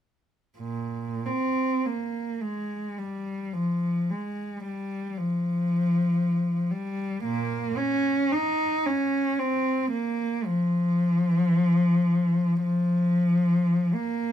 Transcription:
0.59 A#2
1.26 C4
1.86 A#3
2.42 G#3
2.99 G3
3.53 F3
4.10 G#3
4.64 G3
5.17 F3
6.71 G3
7.24 A#2 A#3
7.77 C#4
8.32 D#4
8.86 C#4
9.38 C4
9.91 A#3
10.46 F3
12.63 F3
13.94 A#3

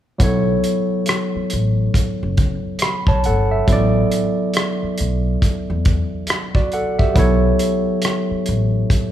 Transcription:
0.18 B1 F#3 B3 E4, kick, closed hi-hat
0.22 A4 C#5
0.64 closed hi-hat
1.06 cross-stick, closed hi-hat
1.36 muted upright bass stroke
1.50 A1, closed hi-hat
1.94 muted upright bass stroke, kick, closed hi-hat
2.23 F#1
2.37 kick, closed hi-hat
2.79 B5, cross-stick, closed hi-hat
3.07 B1 C#5 A5, kick
3.24 G1 A4 F#5, closed hi-hat
3.51 E5
3.67 A1 F#3 B3 E4, kick, closed hi-hat
3.71 A4 D5
4.12 closed hi-hat
4.54 cross-stick, closed hi-hat
4.83 muted upright bass stroke
4.98 B1, closed hi-hat
5.42 muted upright bass stroke, kick, closed hi-hat
5.70 E2
5.85 kick, closed hi-hat
6.27 cross-stick, closed hi-hat
6.55 F#4 D5, kick
6.72 A4 F#5, closed hi-hat
6.99 G4 E5, kick
7.14 B1 F#3 B3 E4, kick, closed hi-hat
7.18 A4 C#5
7.59 closed hi-hat
8.02 cross-stick, closed hi-hat
8.31 muted upright bass stroke
8.46 A1, closed hi-hat
8.90 muted upright bass stroke, kick, closed hi-hat

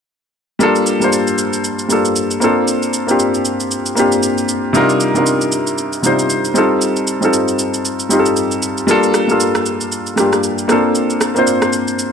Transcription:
0.59 G3 A#3 D4 F4, shaker
0.63 A4
0.76 shaker
0.86 shaker
1.00 G3 A#3 D4 F4, shaker
1.04 C5
1.12 shaker
1.27 shaker
1.38 shaker
1.53 shaker
1.64 shaker
1.79 shaker
1.88 G3 A#3 D4 F4, shaker
1.92 A4
2.05 shaker
2.16 shaker
2.31 shaker
2.40 A#3 C4 D4 F4, shaker
2.44 A4
2.68 shaker
2.83 shaker
2.93 shaker
3.07 A#3 C4 D4 F4 G4, shaker
3.19 shaker
3.34 shaker
3.45 shaker
3.60 shaker
3.71 shaker
3.86 shaker
3.95 A#3 C4 D4 F4, shaker
3.99 G4
4.12 shaker
4.23 shaker
4.38 shaker
4.49 shaker
4.73 C3 G3 D4 D#4 F4, shaker
4.77 A#4
4.89 shaker
5.00 shaker
5.14 C3 G3 D4 D#4 F4 A#4, shaker
5.26 shaker
5.41 shaker
5.52 shaker
5.67 shaker
5.78 shaker
5.93 shaker
6.02 C3 G3 D4 D#4 F4 C5, shaker
6.19 shaker
6.30 shaker
6.45 shaker
6.54 G3 C4 D#4 F4 A4, shaker
6.81 shaker
6.96 shaker
7.07 shaker
7.21 G3 C4 D#4 F4, shaker
7.25 A4
7.33 shaker
7.48 shaker
7.59 shaker
7.74 shaker
7.85 shaker
8.00 shaker
8.09 G3 C4 D#4 F4, shaker
8.13 G4
8.19 A4
8.26 shaker
8.36 shaker
8.51 shaker
8.62 shaker
8.78 shaker
8.87 G3 A#3 D4 F4 A4, shaker
9.03 shaker
9.14 cross-stick, shaker
9.28 G3 A#3 D4 F4, shaker
9.32 A4
9.40 shaker
9.55 cross-stick, shaker
9.66 shaker
9.81 shaker
9.92 shaker
10.06 shaker
10.16 G3 A#3 D4 F4, cross-stick, shaker
10.20 G4
10.33 cross-stick, shaker
10.43 shaker
10.58 shaker
10.68 A#3 C4 D4 F4 A4, cross-stick, shaker
10.95 shaker
11.10 shaker
11.21 cross-stick, shaker
11.35 A#3 C4 D4 F4 C5, shaker
11.47 shaker
11.62 cross-stick, shaker
11.73 shaker
11.88 shaker
11.99 shaker

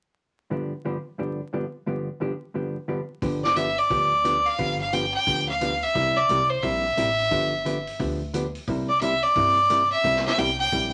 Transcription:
0.50 G2 D3 F3 B3 D4 G4
0.85 G2 D3 F3 B3 D4 G4
1.18 G2 D3 F3 B3 D4 G4
1.53 G2 D3 F3 B3 D4 G4
1.86 G2 D3 F3 B3 D4 G4
2.20 G2 D3 F3 B3 D4 G4
2.54 G2 D3 F3 B3 D4 G4
2.88 G2 D3 F3 B3 D4 G4
3.22 G1 D3 F3 B3 D4 G4, kick, open hi-hat
3.44 D5, snare
3.56 D3 F3 B3 D4 G4 E5, closed hi-hat
3.78 D5, open hi-hat
3.90 D2 D3 F3 B3 D4 G4, kick, open hi-hat
4.24 D3 F3 B3 D4 G4, closed hi-hat
4.46 F5, open hi-hat
4.59 G1 D3 F3 B3 D4 G4, kick, open hi-hat
4.81 F5
4.93 D3 F3 B3 D4 G4 G5, closed hi-hat
5.14 G5
5.27 D2 D3 F3 B3 D4 G4, kick, open hi-hat
5.49 F5
5.61 D3 F3 B3 D4 G4, closed hi-hat
5.82 E5, open hi-hat
5.95 C2 C3 G3 A#3 E4 G4, kick, open hi-hat
6.16 D5
6.29 C2 C3 G3 A#3 E4 G4, closed hi-hat
6.50 C5
6.62 A#1 C3 G3 A#3 E4 G4 E5, kick, open hi-hat
6.97 A1 C3 G3 A#3 E4 G4, closed hi-hat
7.19 open hi-hat
7.31 G1 D3 F3 B3 D4 G4, kick, open hi-hat
7.65 D3 F3 B3 D4 G4, closed hi-hat
7.87 open hi-hat
7.99 D2 D3 F3 B3 D4 G4, kick, open hi-hat
8.34 D3 F3 B3 D4 G4, closed hi-hat
8.55 open hi-hat
8.68 C2 C3 G3 A#3 E4 G4, kick, open hi-hat
8.89 D5
9.01 C3 G3 A#3 E4 G4 E5, closed hi-hat
9.22 D5, open hi-hat
9.36 G2 C3 G3 A#3 E4 G4, kick, open hi-hat
9.70 C3 G3 A#3 E4 G4, closed hi-hat
9.91 E5, open hi-hat
10.04 C2 C3 G3 A#3 E4 G4, kick, open hi-hat
10.16 snare
10.25 E5, snare
10.37 C2 C3 G3 A#3 E4 G4 G5, closed hi-hat
10.60 G5, open hi-hat
10.72 A#1 C3 G3 A#3 E4 G4, kick, open hi-hat

